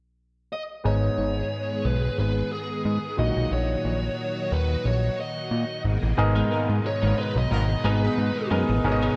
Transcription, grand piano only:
0.84 G#2 B3 G#4 D#5 A#5
3.17 A#2 F#3 D#4 F#4 D#5
6.17 G#2 B3 G#4 A#4 D#5
7.84 B3 G#4 D#5 A#5
8.50 B3 G#4 A#4 D#5
8.84 G#2 B3 G#4 A#4 C#5
8.92 D#5

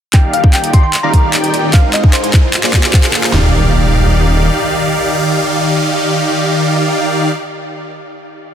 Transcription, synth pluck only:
0.14 G5
0.33 F5
0.54 G5
0.73 C6
0.83 C6
1.03 A#5
1.73 F5
1.93 D#5
2.13 C5
2.23 C5

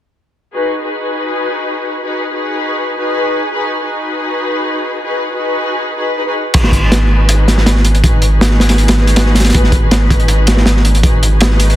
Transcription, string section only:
0.54 D#4 F#4 G#4 B4
0.82 D#4 F#4 G#4 B4
2.04 D#4 F#4 G#4 B4
2.33 D#4 F#4 G#4 B4
2.97 D#4 F#4 G#4 B4
3.53 D#4 F#4 G#4 B4
3.82 D#4 F#4 G#4 B4
5.04 D#4 F#4 G#4 B4
5.32 D#4 F#4 G#4 B4
5.98 D#4 F#4 G#4 B4
6.17 D#4 F#4 G#4 B4
6.26 D#4 F#4 G#4 B4
6.54 D#4 F#4 G#4 B4
6.82 D#4 F#4 G#4 B4
8.04 D#4 F#4 G#4 B4
8.32 D#4 F#4 G#4 B4
8.98 D#4 F#4 G#4 B4
9.54 D#4 F#4 G#4 B4
9.82 D#4 F#4 G#4 B4
11.04 D#4 F#4 G#4 B4
11.32 D#4 F#4 G#4 B4

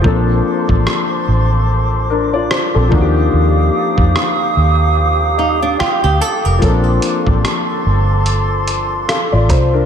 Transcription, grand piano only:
0.01 F3 A#3 C4
0.06 D4 A4
2.10 D4 A#4
2.33 F4 D5
2.51 C5
2.75 C4 A4
2.89 F3 A#3 D4
2.93 D#4 F#4
3.01 G4
5.38 F5
5.79 G5
6.21 A5
6.59 F3 A#3 C4
6.63 C#4 A4
6.69 D4
9.09 A4 F5
9.32 F4 D5
9.49 C5
9.73 D4 A#4

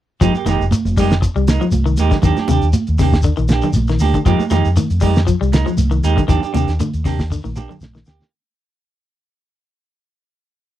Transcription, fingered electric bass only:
0.22 F1
0.34 muted fingered electric bass stroke
0.45 F1
0.60 F1
0.85 F1
1.36 C2
1.73 C2
1.99 D#2
2.24 D#2
2.37 muted fingered electric bass stroke
2.49 D#2
2.62 D#2
2.88 D#2
3.38 A#1
3.75 A#1
4.00 D2
4.26 F2
4.39 muted fingered electric bass stroke
4.51 F2
4.66 F2
4.90 F2
5.41 C2
5.77 C2
6.04 D#2
6.29 D#2
6.43 muted fingered electric bass stroke
6.54 D#2
6.68 D#2
6.94 D#2
7.44 A#1
7.81 A#1
8.07 D2

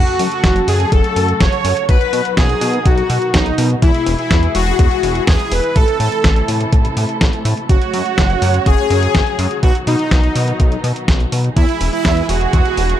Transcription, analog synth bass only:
0.19 F#2
0.44 F#1
0.68 F#2
0.92 F#1
1.16 F#2
1.40 F#1
1.65 F#2
1.89 B1
2.13 B2
2.37 B1
2.61 B2
2.86 B1
3.10 B2
3.34 B1
3.58 B2
3.82 E2
4.06 E1
4.31 E2
4.55 E1
4.79 E2
5.03 E1
5.27 E2
5.52 E1
5.76 A1
6.00 A2
6.24 A1
6.48 A2
6.73 A1
6.97 A2
7.21 A1
7.45 A2
7.69 F#1
7.94 F#2
8.18 F#1
8.42 F#2
8.66 F#1
8.90 F#2
9.15 F#1
9.39 F#2
9.63 B1
9.87 B2
10.11 B1
10.35 B2
10.60 B1
10.84 B2
11.08 B1
11.32 B2
11.56 E2
11.81 E1
12.05 E2
12.29 E1
12.53 E2
12.77 E1

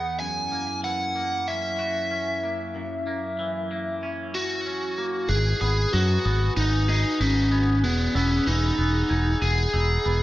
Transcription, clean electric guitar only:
Already playing: E3 B3 D#4 G#4
0.20 F#2
0.52 A#3
0.84 E3
1.16 A#3
1.48 C#4
1.79 F#4
2.11 C#4
2.44 A#3
2.75 F#2
3.07 A#3
3.39 E3
3.71 A#3
4.03 C#4
4.35 F#4
4.66 C#4
4.98 A#3
5.30 G#2
5.61 B3
5.93 F#3
6.25 B3
6.56 D#4
6.88 G#4
7.20 D#4
7.51 B3
7.83 E2
8.14 B3
8.46 E3
8.78 B3
9.10 D#4
9.42 G#4
9.73 D#4
10.05 B3

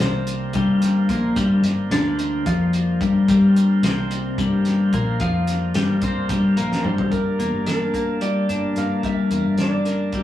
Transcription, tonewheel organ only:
Already playing: G3 A#3 D4 A#4 C5
7.09 G3 A#3 D4 A#4 D5

